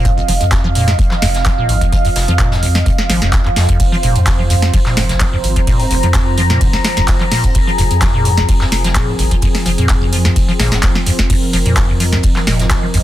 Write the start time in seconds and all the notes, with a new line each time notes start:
Already playing: F3 C4 F5
0.05 G#2 D#5, kick, closed hi-hat
0.17 F1, closed hi-hat
0.28 F1 F3, closed hi-hat, open hi-hat
0.41 F2, closed hi-hat
0.52 kick, snare, clap, closed hi-hat
0.64 F3
0.75 A#2, closed hi-hat, open hi-hat
0.88 G#2, snare, closed hi-hat
0.99 F1, kick, closed hi-hat
1.11 F3, snare, clap
1.22 F1 F2, snare, closed hi-hat, open hi-hat
1.34 snare, closed hi-hat
1.45 F3, kick, snare, clap, closed hi-hat
1.58 A#2
1.69 G#1 G#2, closed hi-hat, open hi-hat
1.81 F1, kick, closed hi-hat
1.92 F3, kick, closed hi-hat
2.05 F2, open hi-hat
2.16 F1, snare, closed hi-hat, open hi-hat
2.28 F2 F3, closed hi-hat
2.39 A#2, kick, clap, closed hi-hat
2.52 G#2, snare, closed hi-hat
2.63 F1, open hi-hat
2.75 F3, snare, closed hi-hat
2.86 F1 F2, kick, closed hi-hat
2.98 snare, closed hi-hat
3.09 G#1 F3, snare, closed hi-hat, open hi-hat
3.22 F1 F2, snare, closed hi-hat
3.33 kick, snare, clap, closed hi-hat
3.45 F2, clap
3.56 F2, snare, closed hi-hat, open hi-hat
3.69 F2, kick, closed hi-hat
3.80 C5, kick, closed hi-hat, ride
3.92 F3, closed hi-hat
4.03 F1 A#2, closed hi-hat, open hi-hat
4.16 F2 G#2, closed hi-hat
4.27 F1, kick, snare, clap, closed hi-hat, ride
4.39 F3
4.45 A#5
4.50 F2, closed hi-hat, open hi-hat
4.62 snare, closed hi-hat
4.74 F3, kick, closed hi-hat, ride
4.86 A#2, snare, clap
4.97 F1 G#2, snare, closed hi-hat, open hi-hat
5.09 F1, snare, closed hi-hat
5.20 F3, kick, snare, clap, closed hi-hat, ride
5.33 F2
5.44 G#1, closed hi-hat, open hi-hat
5.56 F3, kick, closed hi-hat
5.67 A#2, kick, closed hi-hat, ride
5.80 G#2, open hi-hat
5.90 F1, closed hi-hat, open hi-hat
6.03 F2 F3, closed hi-hat
6.14 F2, kick, snare, clap, closed hi-hat, ride
6.38 F3, closed hi-hat, open hi-hat
6.50 A#2, snare, closed hi-hat
6.61 F1 G#2, kick, closed hi-hat, ride
6.73 F1, snare, closed hi-hat
6.85 F3, snare, closed hi-hat, open hi-hat
6.97 F1 F2, snare, closed hi-hat
7.08 kick, snare, clap, closed hi-hat, ride
7.20 F3, clap
7.31 A#2, snare, open hi-hat
7.44 G#2, kick, closed hi-hat
7.54 F1 G#4, kick, closed hi-hat, ride
7.67 F3, closed hi-hat
7.78 F1 F2, closed hi-hat, open hi-hat
7.91 F2, closed hi-hat
8.02 F3, kick, snare, clap, closed hi-hat, ride
8.14 A#2
8.25 G#2, closed hi-hat, open hi-hat
8.37 F1, snare, closed hi-hat
8.49 F3, kick, closed hi-hat, ride
8.61 F2, snare, clap
8.72 F1, snare, closed hi-hat, open hi-hat
8.84 F3, snare, closed hi-hat
8.95 A#2, kick, snare, clap, closed hi-hat, ride
9.08 G#2
9.19 F1 G#1, closed hi-hat, open hi-hat
9.31 F3, kick, closed hi-hat
9.42 F2, kick, closed hi-hat, ride
9.55 snare, open hi-hat
9.66 F1 F3, closed hi-hat, open hi-hat
9.78 F2 A#2, closed hi-hat
9.89 G#2, kick, snare, clap, closed hi-hat, ride
10.01 F1
10.12 F3, closed hi-hat, open hi-hat
10.25 F2, snare, closed hi-hat
10.36 F1, kick, closed hi-hat, ride
10.48 F3, closed hi-hat
10.60 G#1 A#2, snare, closed hi-hat, open hi-hat
10.72 F1 G#2, snare, closed hi-hat
10.82 F1, kick, snare, clap, closed hi-hat, ride
10.95 F3, snare
11.06 F2, closed hi-hat, open hi-hat
11.19 kick, snare, closed hi-hat
11.30 F2 A#4, kick, closed hi-hat, crash, ride
11.34 D#5
11.42 closed hi-hat
11.53 F1 F3, closed hi-hat, open hi-hat
11.66 F2 A#2, closed hi-hat
11.76 G#2, kick, snare, clap, closed hi-hat, ride
11.89 F1
12.00 F3, closed hi-hat, open hi-hat
12.12 F2, snare, closed hi-hat
12.23 kick, closed hi-hat, ride
12.36 F3, snare, clap
12.47 F1 A#2, snare, closed hi-hat, open hi-hat
12.59 G#2, snare, closed hi-hat
12.71 F1, kick, snare, clap, closed hi-hat, ride
12.83 F3
12.94 G#1 F2, closed hi-hat, open hi-hat